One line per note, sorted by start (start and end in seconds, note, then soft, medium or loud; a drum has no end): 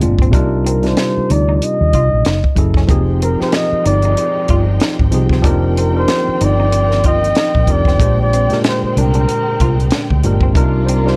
0.00 0.34 G1 medium
0.00 0.36 A#2 medium
0.00 0.35 G#3 medium
0.00 0.36 C4 medium
0.00 0.02 D4 medium
0.00 0.30 D4 medium
0.00 0.30 F4 medium
0.00 0.35 G#4 medium
0.00 muted clean electric guitar stroke soft
0.00 closed hi-hat medium
0.19 0.31 C4 medium
0.19 kick medium
0.19 closed hi-hat soft
0.32 0.94 C2 medium
0.32 0.75 C3 loud
0.32 0.75 G3 medium
0.32 0.48 A#3 medium
0.32 0.76 D4 loud
0.32 0.76 D#4 loud
0.32 0.76 F4 loud
0.32 0.76 A#4 loud
0.32 kick loud
0.32 closed hi-hat medium
0.67 0.80 C4 medium
0.67 0.88 A#4 medium
0.67 closed hi-hat medium
0.82 1.90 C3 medium
0.82 1.90 G3 medium
0.82 1.91 D4 medium
0.82 1.91 D#4 medium
0.82 1.91 F4 medium
0.82 1.92 G4 medium
0.82 snare soft
0.82 closed hi-hat soft
0.87 1.33 C5 medium
0.97 muted clean electric guitar stroke soft
0.97 snare medium
0.97 closed hi-hat medium
1.17 muted fingered electric bass stroke soft
1.30 1.59 D2 medium
1.30 1.44 D#4 medium
1.30 1.56 D5 medium
1.30 closed hi-hat medium
1.49 1.58 D#4 medium
1.56 1.65 D5 medium
1.62 2.58 D#5 loud
1.62 closed hi-hat medium
1.81 1.92 D#2 medium
1.93 2.11 C2 loud
1.93 2.08 F4 medium
1.93 kick medium
1.93 closed hi-hat soft
2.13 2.24 A#1 medium
2.25 2.43 F#1 medium
2.25 2.40 D#4 medium
2.25 snare loud
2.25 closed hi-hat medium
2.44 kick medium
2.55 2.86 F#1 medium
2.55 2.84 F#3 medium
2.55 2.85 C#4 medium
2.55 2.85 E4 medium
2.55 2.86 G#4 medium
2.55 2.86 A4 medium
2.55 muted clean electric guitar stroke soft
2.55 kick medium
2.55 closed hi-hat medium
2.74 2.86 C#4 medium
2.74 kick medium
2.74 snare soft
2.87 3.36 F1 medium
2.87 3.30 F3 loud
2.87 5.42 F3 medium
2.87 5.42 G#3 medium
2.87 3.04 A#3 medium
2.87 3.31 C4 medium
2.87 3.31 D#4 medium
2.87 5.42 D#4 medium
2.87 3.32 G4 medium
2.87 3.32 G#4 loud
2.87 10.51 G5 medium
2.87 kick loud
2.87 closed hi-hat medium
3.22 3.36 C4 medium
3.22 3.40 A#4 medium
3.22 closed hi-hat medium
3.38 4.46 F3 medium
3.38 4.46 C4 medium
3.38 4.46 D#4 medium
3.38 4.47 G4 medium
3.38 3.46 G#4 medium
3.38 3.57 C5 medium
3.38 muted fingered electric bass stroke soft
3.38 snare soft
3.48 4.51 A#4 medium
3.52 3.86 D#5 loud
3.52 muted clean electric guitar stroke soft
3.52 snare loud
3.52 closed hi-hat medium
3.72 muted fingered electric bass stroke soft
3.86 4.14 G1 medium
3.86 3.99 D#4 medium
3.86 5.09 D5 medium
3.86 closed hi-hat medium
4.02 4.14 D#4 medium
4.02 closed hi-hat soft
4.17 closed hi-hat medium
4.48 4.78 G1 loud
4.48 4.63 F4 medium
4.48 kick medium
4.48 closed hi-hat soft
4.80 4.96 D#4 medium
4.80 snare loud
4.80 closed hi-hat medium
4.99 5.12 G#1 medium
4.99 kick medium
5.11 5.42 C2 medium
5.11 5.40 F3 medium
5.11 5.40 C4 medium
5.11 5.40 D#4 medium
5.11 5.41 G4 medium
5.11 5.41 G#4 medium
5.11 muted clean electric guitar stroke soft
5.11 closed hi-hat medium
5.29 5.42 C4 medium
5.29 kick medium
5.29 snare soft
5.42 6.04 F1 loud
5.42 7.97 D#3 medium
5.42 5.86 F3 loud
5.42 7.97 A#3 medium
5.42 5.86 C4 medium
5.42 7.97 C4 medium
5.42 5.86 D4 loud
5.42 5.86 D#4 medium
5.42 5.87 G4 loud
5.42 5.87 A#4 loud
5.42 kick loud
5.42 closed hi-hat medium
5.47 5.60 A#3 medium
5.77 5.91 C4 medium
5.77 5.95 A#4 medium
5.77 closed hi-hat medium
5.93 7.01 F3 medium
5.93 7.01 C4 medium
5.93 7.02 D4 medium
5.93 7.02 D#4 medium
5.93 7.02 G4 medium
5.93 7.02 A#4 medium
5.98 6.46 C5 medium
6.08 muted clean electric guitar stroke soft
6.08 snare loud
6.08 closed hi-hat medium
6.28 muted fingered electric bass stroke soft
6.41 7.32 G1 medium
6.41 6.55 D#4 medium
6.41 7.06 D5 loud
6.41 closed hi-hat medium
6.60 6.69 D#4 medium
6.72 closed hi-hat medium
6.91 snare soft
7.04 7.19 F4 medium
7.04 7.73 D#5 loud
7.04 kick medium
7.04 closed hi-hat medium
7.24 closed hi-hat soft
7.35 7.51 D#4 medium
7.35 snare loud
7.35 closed hi-hat medium
7.55 7.67 A#1 medium
7.55 kick medium
7.67 8.00 F1 medium
7.67 7.95 F3 medium
7.67 7.96 C4 medium
7.67 7.96 D4 medium
7.67 7.96 D#4 medium
7.67 7.97 G4 medium
7.67 7.97 A#4 medium
7.67 muted clean electric guitar stroke soft
7.67 kick medium
7.67 closed hi-hat medium
7.72 8.20 D5 loud
7.85 7.97 C4 medium
7.85 kick medium
7.85 snare soft
7.85 closed hi-hat soft
7.98 8.47 A#1 medium
7.98 8.41 A#2 medium
7.98 10.53 D3 medium
7.98 8.42 G#3 medium
7.98 10.53 G#3 medium
7.98 8.14 A#3 medium
7.98 10.53 C4 medium
7.98 8.42 D4 medium
7.98 8.43 G4 medium
7.98 8.43 C5 medium
7.98 kick loud
7.98 closed hi-hat medium
8.22 8.62 D5 loud
8.33 8.46 C4 medium
8.33 closed hi-hat medium
8.49 9.56 A#2 medium
8.49 9.57 G#3 medium
8.49 9.57 D4 medium
8.49 9.58 G4 medium
8.49 9.58 A#4 medium
8.49 muted fingered electric bass stroke medium
8.49 snare soft
8.49 closed hi-hat soft
8.64 8.83 C5 medium
8.64 muted clean electric guitar stroke soft
8.64 snare loud
8.64 closed hi-hat medium
8.83 8.99 C5 medium
8.83 muted fingered electric bass stroke soft
8.97 9.25 C2 loud
8.97 9.11 D4 medium
8.97 10.24 A#4 medium
8.97 closed hi-hat medium
9.14 9.24 D4 medium
9.14 closed hi-hat soft
9.29 closed hi-hat medium
9.60 9.89 C2 medium
9.60 9.74 F4 medium
9.60 kick medium
9.60 closed hi-hat medium
9.80 closed hi-hat soft
9.91 10.06 D4 medium
9.91 snare loud
9.91 closed hi-hat medium
10.10 10.23 D2 medium
10.10 kick medium
10.23 10.56 G1 medium
10.23 10.51 A#2 medium
10.23 10.51 G#3 medium
10.23 10.52 D4 medium
10.23 10.52 G4 medium
10.23 10.53 A#4 medium
10.23 muted clean electric guitar stroke soft
10.23 closed hi-hat medium
10.41 10.52 C4 medium
10.41 kick medium
10.54 11.15 C2 medium
10.54 10.97 C3 loud
10.54 11.16 F3 medium
10.54 10.97 G3 medium
10.54 11.16 A#3 medium
10.54 10.70 A#3 medium
10.54 10.97 D4 loud
10.54 10.98 D#4 loud
10.54 11.16 F4 medium
10.54 10.98 F4 loud
10.54 10.98 A#4 loud
10.54 11.16 D5 medium
10.54 kick loud
10.54 closed hi-hat medium
10.85 11.02 C4 medium
10.85 11.08 A#4 medium
10.85 10.90 C5 medium
10.85 closed hi-hat medium
11.05 11.16 C3 medium
11.05 11.16 G3 medium
11.05 11.16 D4 medium
11.05 11.16 D#4 medium
11.05 11.16 F4 medium
11.05 11.12 A#4 medium
11.05 11.16 C5 loud
11.05 snare soft